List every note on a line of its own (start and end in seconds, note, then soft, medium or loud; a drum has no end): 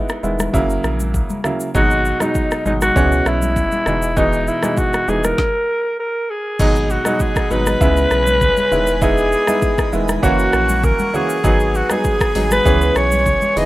0.00 0.20 G#3 medium
0.00 0.20 B3 medium
0.00 0.20 D#4 medium
0.00 0.20 E4 medium
0.09 cross-stick medium
0.09 shaker soft
0.23 0.49 E1 medium
0.23 0.51 D#3 medium
0.23 0.51 G#3 medium
0.23 0.51 B3 medium
0.23 0.51 E4 medium
0.23 high conga medium
0.23 shaker medium
0.39 cross-stick medium
0.39 high conga medium
0.39 shaker loud
0.53 0.79 F#1 loud
0.53 1.37 C#3 medium
0.53 1.37 F#3 medium
0.53 1.38 A#3 medium
0.53 1.38 E4 loud
0.53 kick loud
0.53 low conga medium
0.53 shaker medium
0.70 shaker medium
0.84 1.22 A#1 medium
0.84 cross-stick medium
0.84 shaker soft
1.00 high conga medium
1.00 shaker loud
1.14 kick medium
1.14 shaker medium
1.30 high conga medium
1.30 shaker medium
1.44 1.67 C#3 medium
1.44 1.67 F#3 medium
1.44 1.67 A#3 medium
1.44 1.68 E4 medium
1.44 cross-stick medium
1.44 low conga medium
1.44 shaker medium
1.60 shaker medium
1.74 2.13 G#1 loud
1.74 2.17 B2 medium
1.74 2.17 F#3 medium
1.74 2.17 G#3 medium
1.74 2.17 D#4 loud
1.74 2.23 F#4 loud
1.74 kick loud
1.74 low conga medium
1.74 shaker medium
1.91 shaker soft
2.05 shaker medium
2.20 2.62 B2 medium
2.20 2.62 F#3 medium
2.20 2.62 G#3 medium
2.20 2.62 D#4 medium
2.20 2.66 D#4 medium
2.20 cross-stick medium
2.20 high conga medium
2.20 shaker medium
2.35 kick medium
2.35 shaker medium
2.51 cross-stick medium
2.51 shaker soft
2.65 2.91 G#1 medium
2.65 2.93 B2 medium
2.65 2.93 F#3 medium
2.65 2.94 G#3 medium
2.65 2.94 D#4 medium
2.65 2.74 D#4 medium
2.65 high conga medium
2.65 shaker medium
2.81 3.29 F#4 medium
2.81 cross-stick medium
2.81 high conga medium
2.81 shaker loud
2.95 3.21 C#2 loud
2.95 3.80 B2 medium
2.95 3.80 E3 medium
2.95 3.80 G#3 medium
2.95 3.80 C#4 loud
2.95 kick loud
2.95 low conga medium
2.95 shaker medium
3.12 shaker medium
3.26 3.64 B1 medium
3.26 4.19 E4 loud
3.26 cross-stick medium
3.26 shaker soft
3.42 high conga medium
3.42 shaker medium
3.56 kick medium
3.56 shaker medium
3.72 high conga medium
3.72 shaker medium
3.86 4.50 E1 loud
3.86 4.09 B2 medium
3.86 4.10 E3 medium
3.86 4.10 G#3 medium
3.86 4.10 D#4 medium
3.86 cross-stick medium
3.86 low conga medium
3.86 shaker medium
4.02 shaker medium
4.16 4.59 B2 medium
4.16 4.59 E3 medium
4.16 4.59 G#3 medium
4.16 4.59 D#4 loud
4.16 4.49 D#4 medium
4.16 kick loud
4.16 low conga medium
4.16 shaker medium
4.33 shaker soft
4.47 4.80 E4 medium
4.47 shaker medium
4.63 5.04 B2 medium
4.63 5.04 E3 medium
4.63 5.04 G#3 medium
4.63 5.05 D#4 medium
4.63 cross-stick medium
4.63 high conga medium
4.63 shaker loud
4.77 5.10 F#4 loud
4.77 kick loud
4.77 shaker medium
4.93 cross-stick medium
4.93 high conga soft
4.93 shaker soft
5.08 5.33 E1 medium
5.08 5.36 B2 medium
5.08 5.36 E3 medium
5.08 5.36 G#3 medium
5.08 5.36 D#4 medium
5.08 5.26 G#4 medium
5.08 high conga medium
5.08 shaker medium
5.24 5.99 A#4 loud
5.24 cross-stick medium
5.24 high conga medium
5.24 shaker loud
5.38 kick loud
5.38 snare medium
6.00 6.32 A#4 medium
6.30 6.92 G#4 medium
6.59 6.98 G#1 loud
6.59 7.02 B2 medium
6.59 7.02 F#3 medium
6.59 7.02 G#3 medium
6.59 7.02 D#4 loud
6.59 7.80 G#4 medium
6.59 7.80 D#5 medium
6.59 7.80 F#5 medium
6.59 10.20 B5 medium
6.59 kick loud
6.59 crash medium
6.59 low conga medium
6.59 shaker medium
6.76 shaker soft
6.90 7.22 F#4 medium
6.90 shaker medium
7.05 7.47 B2 medium
7.05 7.47 F#3 medium
7.05 7.47 G#3 medium
7.05 7.47 D#4 medium
7.05 cross-stick medium
7.05 high conga medium
7.05 shaker loud
7.20 7.53 G#4 medium
7.20 kick loud
7.20 shaker medium
7.36 kick medium
7.36 cross-stick medium
7.36 shaker medium
7.50 7.76 G#1 loud
7.50 7.78 B2 medium
7.50 7.78 F#3 medium
7.50 7.79 G#3 medium
7.50 7.79 D#4 medium
7.50 9.02 B4 loud
7.50 high conga medium
7.50 shaker medium
7.66 cross-stick medium
7.66 high conga medium
7.66 shaker loud
7.81 8.06 C#2 loud
7.81 8.65 C#3 medium
7.81 8.65 G#3 medium
7.81 8.65 B3 medium
7.81 8.65 E4 loud
7.81 10.21 G#4 medium
7.81 8.71 C#5 medium
7.81 11.41 G#5 medium
7.81 kick loud
7.81 low conga medium
7.81 shaker medium
7.97 shaker medium
8.11 8.49 B1 medium
8.11 cross-stick medium
8.11 shaker soft
8.27 high conga medium
8.27 shaker loud
8.41 kick medium
8.41 low conga medium
8.41 shaker medium
8.57 high conga medium
8.57 shaker medium
8.71 9.35 E1 loud
8.71 8.95 D#3 medium
8.71 8.95 G#3 medium
8.71 8.95 B3 medium
8.71 8.95 E4 medium
8.71 10.22 D#5 medium
8.71 low conga medium
8.71 shaker medium
8.87 shaker medium
9.01 9.44 G#3 medium
9.01 9.44 B3 medium
9.01 9.44 D#4 medium
9.01 9.44 E4 loud
9.01 9.93 G#4 loud
9.01 kick loud
9.01 low conga medium
9.01 shaker medium
9.18 shaker soft
9.32 shaker medium
9.47 9.89 G#3 medium
9.47 9.89 B3 medium
9.47 9.89 D#4 medium
9.47 9.89 E4 medium
9.47 cross-stick medium
9.47 high conga medium
9.47 shaker loud
9.62 kick loud
9.62 shaker medium
9.78 kick medium
9.78 cross-stick medium
9.78 shaker soft
9.92 10.18 E1 medium
9.92 10.21 D#3 medium
9.92 10.21 G#3 medium
9.92 10.21 B3 medium
9.92 10.21 E4 medium
9.92 high conga medium
9.92 shaker medium
10.08 cross-stick medium
10.08 high conga medium
10.08 shaker loud
10.22 10.48 F#1 loud
10.22 11.07 E3 medium
10.22 11.07 A#3 medium
10.22 11.07 C#4 medium
10.22 11.07 F#4 loud
10.22 10.86 F#4 loud
10.22 11.43 A#4 medium
10.22 12.63 F#5 medium
10.22 11.43 C#6 medium
10.22 kick loud
10.22 low conga medium
10.22 shaker medium
10.39 shaker medium
10.53 10.92 A#1 medium
10.53 cross-stick medium
10.53 shaker soft
10.69 high conga medium
10.69 shaker loud
10.83 11.16 A#4 loud
10.83 kick medium
10.83 low conga medium
10.83 shaker medium
10.99 high conga medium
10.99 shaker medium
11.13 11.37 E3 medium
11.13 11.37 A#3 medium
11.13 11.37 C#4 medium
11.13 11.37 F#4 medium
11.13 11.77 G#4 loud
11.13 low conga medium
11.13 shaker medium
11.30 shaker medium
11.44 11.83 G#1 loud
11.44 11.86 F#3 medium
11.44 11.86 B3 medium
11.44 11.87 D#4 medium
11.44 11.87 G#4 loud
11.44 13.54 B4 medium
11.44 13.65 G#5 medium
11.44 12.64 D#6 medium
11.44 kick loud
11.44 low conga medium
11.44 shaker medium
11.60 shaker soft
11.75 11.93 F#4 medium
11.75 shaker medium
11.90 12.32 F#3 medium
11.90 12.32 B3 medium
11.90 12.32 D#4 medium
11.90 12.32 G#4 medium
11.90 12.52 G#4 loud
11.90 cross-stick medium
11.90 high conga medium
11.90 shaker loud
12.04 kick loud
12.04 shaker medium
12.20 kick medium
12.20 cross-stick loud
12.20 shaker soft
12.35 12.60 G#1 medium
12.35 12.63 F#3 medium
12.35 12.63 B3 medium
12.35 12.63 D#4 medium
12.35 12.63 G#4 medium
12.35 open hi-hat medium
12.35 high conga medium
12.35 shaker medium
12.51 12.98 B4 loud
12.51 cross-stick medium
12.51 high conga medium
12.51 shaker loud
12.65 12.91 C#2 loud
12.65 13.49 E3 medium
12.65 13.50 B3 medium
12.65 13.50 C#4 medium
12.65 13.50 G#4 loud
12.65 13.56 C#6 medium
12.65 kick loud
12.65 low conga medium
12.65 shaker medium
12.81 shaker medium
12.96 13.34 B1 medium
12.96 13.59 C#5 loud
12.96 cross-stick medium
12.96 shaker soft
13.12 high conga medium
13.12 shaker medium
13.26 kick medium
13.26 low conga medium
13.26 shaker medium
13.42 high conga medium
13.42 shaker medium
13.56 13.65 E1 loud
13.56 13.65 E3 medium
13.56 13.65 B3 medium
13.56 13.65 D#4 medium
13.56 13.65 G#4 medium
13.56 13.65 B4 medium
13.56 13.65 D#5 loud
13.56 13.65 D#6 medium
13.56 open hi-hat medium
13.56 low conga medium
13.56 shaker medium